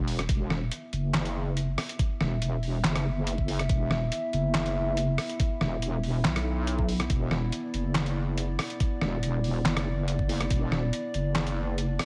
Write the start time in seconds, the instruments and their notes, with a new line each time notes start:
Already playing: wobble bass E1
0.08 open hi-hat
0.19 cross-stick, closed hi-hat
0.29 wobble bass E1, analog synth pad B3 E4 E5, kick, closed hi-hat
0.50 cross-stick, snare
0.71 closed hi-hat
0.93 wobble bass F#1, closed hi-hat
1.14 snare, clap, closed hi-hat
1.25 closed hi-hat
1.57 closed hi-hat
1.78 cross-stick, open hi-hat
1.89 closed hi-hat
1.99 kick, closed hi-hat
2.21 wobble bass E1, cross-stick, snare
2.42 closed hi-hat
2.63 open hi-hat
2.84 wobble bass F#1, snare, clap, closed hi-hat
2.96 cross-stick, closed hi-hat
3.27 closed hi-hat
3.38 kick
3.48 open hi-hat
3.59 cross-stick, closed hi-hat
3.69 wobble bass E1, kick, closed hi-hat
3.91 cross-stick, snare
4.12 closed hi-hat
4.33 wobble bass F#1, closed hi-hat
4.54 snare, clap, closed hi-hat
4.66 closed hi-hat
4.97 closed hi-hat
5.18 cross-stick, open hi-hat
5.30 closed hi-hat
5.40 kick, closed hi-hat
5.61 wobble bass E1, cross-stick, snare
5.82 closed hi-hat
6.03 open hi-hat
6.25 wobble bass B1, snare, clap, closed hi-hat
6.36 cross-stick, closed hi-hat
6.67 closed hi-hat
6.79 kick
6.89 open hi-hat
7.00 cross-stick, closed hi-hat
7.10 wobble bass E1, analog synth pad D5, kick, closed hi-hat
7.31 cross-stick, snare
7.52 closed hi-hat
7.74 wobble bass F#1, closed hi-hat
7.95 snare, clap, closed hi-hat
8.06 closed hi-hat
8.38 closed hi-hat
8.59 cross-stick, open hi-hat
8.70 closed hi-hat
8.80 kick, closed hi-hat
9.01 wobble bass E1, cross-stick, snare
9.23 closed hi-hat
9.44 open hi-hat
9.65 wobble bass F#1, snare, clap, closed hi-hat
9.77 cross-stick, closed hi-hat
10.08 closed hi-hat
10.19 kick
10.29 open hi-hat
10.41 cross-stick, closed hi-hat
10.50 wobble bass E1, kick, closed hi-hat
10.72 cross-stick, snare
10.93 closed hi-hat
11.14 wobble bass F#1, closed hi-hat
11.35 snare, clap, closed hi-hat
11.47 closed hi-hat
11.78 closed hi-hat
11.99 cross-stick, open hi-hat